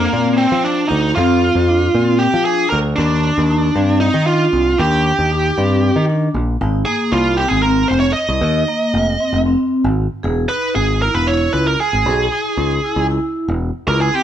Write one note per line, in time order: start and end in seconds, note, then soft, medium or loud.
0.00 0.37 A#3 medium
0.13 0.45 A#2 medium
0.13 0.48 C4 medium
0.38 0.65 C4 medium
0.52 0.84 F3 medium
0.63 0.88 D4 medium
0.63 0.99 D4 medium
0.89 1.12 D2 medium
0.89 1.15 D#4 medium
1.15 1.49 F2 loud
1.15 1.52 C4 medium
1.15 2.23 F4 loud
1.55 1.87 F2 medium
1.68 1.86 D4 medium
1.94 2.26 A#2 medium
1.94 2.29 C4 medium
2.19 2.45 G4 loud
2.34 2.66 F3 medium
2.45 2.81 D4 medium
2.45 2.69 G#4 loud
2.70 2.94 D2 medium
2.70 2.77 A#4 loud
2.96 3.30 D#2 loud
2.96 3.97 D4 loud
2.96 3.33 D4 medium
3.38 3.69 D#2 medium
3.50 3.68 D#4 medium
3.76 4.08 G2 medium
3.76 4.11 C4 medium
4.00 4.25 D#4 medium
4.14 4.46 D#3 medium
4.27 4.63 D4 medium
4.27 4.80 F4 loud
4.53 4.74 C2 medium
4.78 5.11 D#2 loud
4.78 5.14 D4 medium
4.78 6.04 G4 medium
5.19 5.50 D#2 medium
5.32 5.49 D#4 medium
5.58 5.89 G2 medium
5.58 5.93 C4 medium
5.96 6.28 D#3 medium
6.09 6.44 D4 medium
6.34 6.56 A#1 medium
6.61 6.82 G#1 loud
6.61 6.79 D#4 medium
6.85 7.22 A#3 medium
6.85 7.13 G#4 medium
7.12 7.44 C2 medium
7.12 7.39 F4 medium
7.37 7.56 C4 medium
7.37 7.48 G4 medium
7.48 7.83 G#1 medium
7.48 7.62 G#4 medium
7.62 8.00 C4 medium
7.62 7.90 A#4 medium
7.88 8.12 F1 medium
7.88 8.00 C5 medium
8.00 8.13 C#5 medium
8.13 9.40 D#5 loud
8.29 8.40 C2 medium
8.41 8.63 D#2 loud
8.41 8.60 D#4 medium
8.68 9.03 A#3 medium
8.94 9.15 F1 medium
9.20 9.38 C4 medium
9.33 9.54 F1 medium
9.46 9.81 C4 medium
9.84 10.06 G#1 loud
10.23 10.45 E1 loud
10.23 10.41 G#4 medium
10.49 10.85 D#4 medium
10.49 10.75 B4 medium
10.75 11.08 G#1 loud
10.75 11.02 G#4 medium
11.02 11.19 E4 medium
11.02 11.15 A#4 medium
11.15 11.47 E1 medium
11.15 11.28 B4 medium
11.27 11.63 E4 medium
11.27 11.52 C#5 loud
11.53 11.75 C#2 medium
11.53 11.67 B4 medium
11.67 11.80 A#4 medium
11.80 13.06 G#4 medium
11.93 12.04 G#1 medium
12.06 12.27 B1 loud
12.06 12.23 G#4 medium
12.32 12.67 D#4 medium
12.57 12.79 C#2 medium
12.84 13.02 E4 medium
12.96 13.18 C#2 medium
13.10 13.45 E4 medium
13.48 13.70 E1 loud
13.87 14.09 C#2 loud
13.87 14.05 E4 medium
13.87 14.01 A#4 medium
14.01 14.15 G#4 medium
14.14 14.23 C4 medium
14.14 14.23 G4 medium